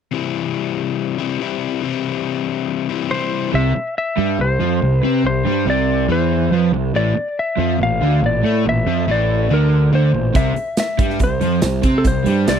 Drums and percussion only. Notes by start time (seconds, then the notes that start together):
10.35 kick, closed hi-hat
10.56 closed hi-hat
10.77 snare, closed hi-hat, tambourine
10.99 kick, closed hi-hat
11.10 snare
11.19 kick, closed hi-hat
11.41 closed hi-hat
11.62 snare, closed hi-hat, tambourine
11.83 kick, closed hi-hat
12.04 kick, closed hi-hat
12.26 closed hi-hat
12.47 snare, closed hi-hat, tambourine